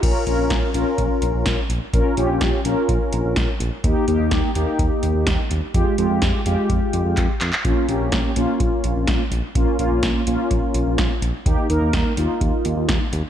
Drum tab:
CC |x---------------|----------------|----------------|----------------|
HH |x-x-x-x-x-x-x-x-|x-x-x-x-x-x-x-x-|x-x-x-x-x-x-x-x-|x-x-x-x-x-x-x-x-|
CP |----------------|----------------|----------------|------------x-xx|
SD |----o-------o---|----o-------o---|----o-------o---|----o-----------|
BD |o---o---o---o---|o---o---o---o---|o---o---o---o---|o---o---o---o---|

CC |----------------|----------------|----------------|
HH |x-x-x-x-x-x-x-x-|x-x-x-x-x-x-x-x-|x-x-x-x-x-x-x-x-|
CP |----------------|----------------|----------------|
SD |----o-------o---|----o-------o---|----o-------o---|
BD |o---o---o---o---|o---o---o---o---|o---o---o---o---|